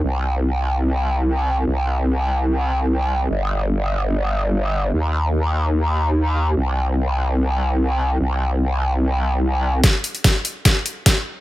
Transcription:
<<
  \new Staff \with { instrumentName = "Wobble bass" } { \clef bass \time 4/4 \key c \minor \tempo 4 = 147 c,1 | c,1 | g,,1 | ees,1 |
c,1 | c,1 | r1 | }
  \new DrumStaff \with { instrumentName = "Drums" } \drummode { \time 4/4 r4 r4 r4 r4 | r4 r4 r4 r4 | r4 r4 r4 r4 | r4 r4 r4 r4 |
r4 r4 r4 r4 | r4 r4 r4 r4 | <hh bd sn>8 hh16 hh16 <hh bd sn>8 hh8 <hh bd sn>8 hh8 <hh bd sn>4 | }
>>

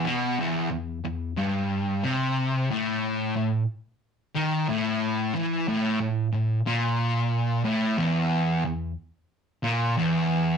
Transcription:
\new Staff \with { instrumentName = "Distorted electric guitar" } { \clef bass \time 4/4 \key a \dorian \tempo 4 = 91 b,8 e,8 e,8 e,8 g,4 c4 | a,4 a,8 r4 dis8 a,4 | e8 a,8 a,8 a,8 ais,4. a,8 | e,4 e,8 r4 ais,8 e,4 | }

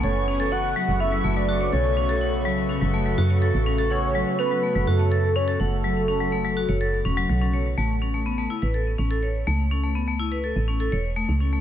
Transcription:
<<
  \new Staff \with { instrumentName = "Soft synth lead" } { \time 4/4 \key a \major \tempo 4 = 124 cis''4 fis''4 e''8. d''8. cis''8~ | cis''4. r2 r8 | cis''4 b'4 a'4 cis''8 a'8~ | a'2. r4 |
r1 | r1 | }
  \new Staff \with { instrumentName = "Synth texture" } { \time 4/4 \key a \major <b cis'''>1~ | <b cis'''>1~ | <b cis'''>1~ | <b cis'''>1 |
r1 | r1 | }
  \new Staff \with { instrumentName = "Ambient pad" } { \time 4/4 \key a \major <cis a fis' a'>1~ | <cis a fis' a'>1~ | <cis a fis' a'>1~ | <cis a fis' a'>1 |
r1 | r1 | }
  \new Staff \with { instrumentName = "Vibraphone" } { \time 4/4 \key a \major a'16 r16 cis'16 a'16 fis''16 r16 fis16 r16 cis'16 fis16 a16 fis16 fis'16 cis''16 a'16 r16 | cis'16 a'16 fis''16 r16 fis16 r16 cis'16 fis16 a16 fis16 fis'16 cis''16 a'16 r16 cis'16 a'16 | fis''16 r16 fis16 r16 cis'16 fis16 a16 fis16 fis'16 cis''16 a'16 r16 cis'16 a'16 fis''16 r16 | fis16 r16 cis'16 fis16 a16 fis16 fis'16 cis''16 a'16 r16 cis'16 fis16 fis16 cis'16 cis''16 r16 |
a16 r16 cis'16 a16 b16 a16 e'16 b'16 a'16 r16 cis'16 a'16 cis''16 r16 a16 r16 | cis'16 a16 b16 a16 e'16 b'16 a'16 r16 cis'16 a'16 cis''16 r16 a16 r16 cis'16 a16 | }
  \new Staff \with { instrumentName = "FM bass" } { \clef bass \time 4/4 \key a \major fis,,4. r16 fis,,8. fis,,4 b,,8~ | b,,4.~ b,,16 fis,,8. fis,8. a,,8.~ | a,,8. r4 fis,,16 fis,4. fis,,8~ | fis,,4.~ fis,,16 fis,,8. e,,8 b,,4 |
a,,4. r16 a,,8. a,,4 cis,8~ | cis,4.~ cis,16 a,,8. e,,8. cis,8. | }
>>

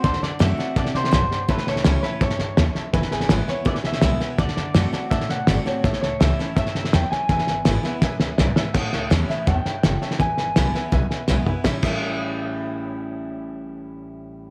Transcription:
<<
  \new Staff \with { instrumentName = "Upright piano" } { \time 4/4 \key e \dorian \tempo 4 = 165 <d'' fis'' a''>8 <d'' fis'' a''>8 <d'' fis'' a''>8 <d'' fis'' a''>8 <d'' fis'' a''>8 <d'' fis'' a''>8 <d'' fis'' a''>8 <d'' fis'' a''>8 | <cis'' e'' a''>8 <cis'' e'' a''>8 <cis'' e'' a''>8 <cis'' e'' a''>8 <cis'' e'' a''>8 <cis'' e'' a''>8 <cis'' e'' a''>8 <cis'' e'' a''>8 | <b' e'' gis''>8 <b' e'' gis''>8 <b' e'' gis''>8 <b' e'' gis''>8 <b' e'' gis''>8 <b' e'' gis''>8 <b' e'' gis''>8 <b' e'' gis''>8 | <d'' fis'' a''>8 <d'' fis'' a''>8 <d'' fis'' a''>8 <d'' fis'' a''>8 <d'' fis'' a''>8 <d'' fis'' a''>8 <d'' fis'' a''>8 <d'' fis'' a''>8 |
<cis'' e'' a''>8 <cis'' e'' a''>8 <cis'' e'' a''>8 <cis'' e'' a''>8 <cis'' e'' a''>8 <cis'' e'' a''>8 <cis'' e'' a''>8 <cis'' e'' a''>8 | <b' e'' gis''>8 <b' e'' gis''>8 <b' e'' gis''>8 <b' e'' gis''>8 <b' e'' gis''>8 <b' e'' gis''>8 <b' e'' gis''>8 <b' e'' gis''>8 | <cis'' e'' a''>8 <cis'' e'' a''>8 <cis'' e'' a''>8 <cis'' e'' a''>8 <cis'' e'' a''>8 <cis'' e'' a''>8 <cis'' e'' a''>8 <cis'' e'' a''>8 | <b' e'' gis''>8 <b' e'' gis''>8 <b' e'' gis''>8 <b' e'' gis''>8 <b' e'' gis''>8 <b' e'' gis''>8 <b' e'' fis'' gis''>8 <b' e'' gis''>8 |
<cis'' e'' a''>8 <cis'' e'' a''>2.~ <cis'' e'' a''>8~ | <cis'' e'' a''>1 | }
  \new Staff \with { instrumentName = "Clean electric guitar" } { \time 4/4 \key e \dorian c''8 d''8 e''4 d''8 c''4. | b'8 cis''4 b'8 cis''4. r8 | b'8 gis'8 b'8 cis''8 d''8 e''4. | d''2 e''8 fis''8 d''8 cis''8~ |
cis''8 cis''8 e''4 e''4 g''8 gis''8~ | gis''2. d''8 e''8 | fis''8 e''4 e''8 g''2 | gis''2. r4 |
e''8 e''2.~ e''8~ | e''1 | }
  \new Staff \with { instrumentName = "Steel-string acoustic guitar" } { \time 4/4 \key e \dorian << { r4 <d a c' fis'>8 <c' fis'>8 r2 | r4 <e g cis' e'>8 <cis' e'>8 r2 | r4 <d gis b e'>8 <b e'>8 r4 <d gis b e'>8 <b e'>8 | r4 <d a c' fis'>8 <c' fis'>8 r4 <d a c' fis'>8 <c' fis'>8 |
r4 <e g cis' e'>8 <cis' e'>8 r2 | r4 <d gis b e'>8 <b e'>8 r2 | r4 <e g cis' e'>8 <cis' e'>8 r2 | r4 <d gis b e'>8 <b e'>8 r4 <d gis b e'>8 <b e'>8 |
<a, e g cis' e'>8 <a, e g cis' e'>2.~ <a, e g cis' e'>8~ | <a, e g cis' e'>1 | } \\ { d2 c4 g,4 | a,2 g,4 fis,4 | e,2 b,2 | d2 a,2 |
a,2 g,4 fis,4 | e,2 fis,4 gis,4 | a,2 g,4 fis,4 | e,2 b,2 |
r1 | r1 | } >> }
  \new Staff \with { instrumentName = "Upright bass" } { \clef bass \time 4/4 \key e \dorian d,8 fis,8 fis,8 r8 a,8 c8 b,,8 r8 | a,,8 cis,8 cis,8 r8 e,8 g,8 dis,8 r8 | e,,8 gis,,8 gis,,8 r8 b,,8 d,8 b,,8 r8 | d,8 fis,8 fis,8 r8 a,8 c8 g,,8 r8 |
a,,8 cis,8 cis,8 r8 e,8 g,8 e,8 r8 | e,,8 gis,,8 gis,,8 r8 b,,8 d,8 b,,8 r8 | a,,8 cis,8 e,8 r8 e,8 r8 fis,,8 r8 | e,,8 gis,,8 b,,8 r8 b,,8 r8 b,,8 r8 |
a,,8 a,,2.~ a,,8~ | a,,1 | }
  \new DrumStaff \with { instrumentName = "Drums" } \drummode { \time 4/4 <bd sn>16 sn16 sn8 <hhp sn>8 sn8 <bd sn>16 sn16 sn16 sn16 <hhp sn>8 sn8 | <bd sn>16 sn16 sn16 sn16 <hhp sn>8 sn8 <bd sn>16 sn16 sn8 <hhp sn>8 sn8 | <bd sn>16 sn16 sn16 sn16 <hhp sn>8 sn8 <bd sn>16 sn16 sn16 sn16 <hhp sn>8 sn8 | <bd sn>16 sn16 sn8 <hhp sn>8 sn8 <bd sn>16 sn16 sn8 <hhp sn>8 sn8 |
<bd sn>16 sn16 sn8 <hhp sn>8 sn8 <bd sn>16 sn16 sn16 sn16 <hhp sn>8 sn8 | <bd sn>16 sn16 sn8 <hhp sn>8 sn8 <bd sn>8 sn8 <hhp sn>8 sn8 | <cymc bd sn>8 sn8 <hhp sn>8 sn8 <bd sn>8 sn8 <hhp sn>8 sn16 sn16 | <bd sn>8 sn8 <hhp sn>8 sn8 <bd sn>8 sn8 <hhp sn>8 tomfh8 |
<bd sn>8 <cymc bd>8 r4 r4 r4 | r4 r4 r4 r4 | }
>>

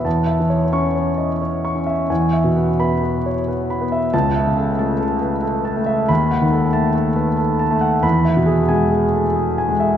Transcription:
<<
  \new Staff \with { instrumentName = "Grand piano" } { \time 3/4 \key e \major \tempo 4 = 91 << { r4 cis'''8 r4. | r4 b''8 r4. | a''8 r2 r8 | b''8 r2 r8 |
b''8 r2 r8 | } \\ { \tuplet 3/2 { a''8 e''8 cis''8~ cis''8 cis''8 dis''8 cis''8 cis'''8 e''8 } | \tuplet 3/2 { gis''8 e''8 b'8~ b'8 b'8 cis''8 b'8 b''8 e''8 } | \tuplet 3/2 { r8 e''8 a'8 a''8 a'8 b'8 a'8 a''8 e''8 } | \tuplet 3/2 { r8 fis''8 a'8 a''8 a'8 b'8 a'8 a''8 fis''8 } |
\tuplet 3/2 { r8 e''8 gis'8 gis''8 gis'8 a'8 gis'8 gis''8 e''8 } | } >> }
  \new Staff \with { instrumentName = "Grand piano" } { \clef bass \time 3/4 \key e \major e,8 e8 cis'4 r8 cis'8 | e,8 b,8 b4 r8 b8 | cis,8 cis8 a4 r8 a8 | dis,8 dis8 a4 r8 a8 |
e,8 b,8 gis4 r8 gis8 | }
>>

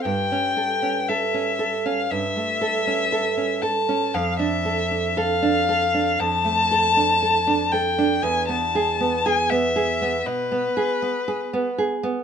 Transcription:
<<
  \new Staff \with { instrumentName = "Violin" } { \time 4/4 \key d \dorian \tempo 4 = 59 g''4 e''8. f''16 e''4. a''8 | f''16 e''8. f''4 a''4. g''8 | gis''16 a''8. gis''16 e''8. b'4. r8 | }
  \new Staff \with { instrumentName = "Nylon-string guitar" } { \time 4/4 \key d \dorian g,16 cis'16 a'16 cis'16 a'16 cis'16 a'16 cis'16 g,16 a16 a'16 cis'16 a'16 cis'16 a'16 cis'16 | f,16 d'16 a'16 d'16 a'16 d'16 a'16 d'16 f,16 a16 a'16 d'16 a'16 d'16 a'16 d'16 | e,16 b16 gis'16 b16 gis'16 b16 gis'16 b16 b,16 b16 gis'16 b16 gis'16 b16 gis'16 b16 | }
>>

